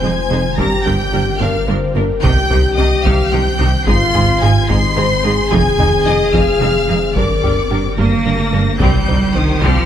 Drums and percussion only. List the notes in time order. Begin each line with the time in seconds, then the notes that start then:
0.58 taiko
0.86 taiko low
1.41 taiko
2.23 taiko
2.51 taiko low
3.05 taiko
3.87 taiko
4.15 taiko low
4.70 taiko
5.52 taiko
5.79 taiko low
6.34 taiko
7.16 taiko
7.43 taiko low
7.98 taiko
8.80 taiko
9.08 taiko low
9.62 taiko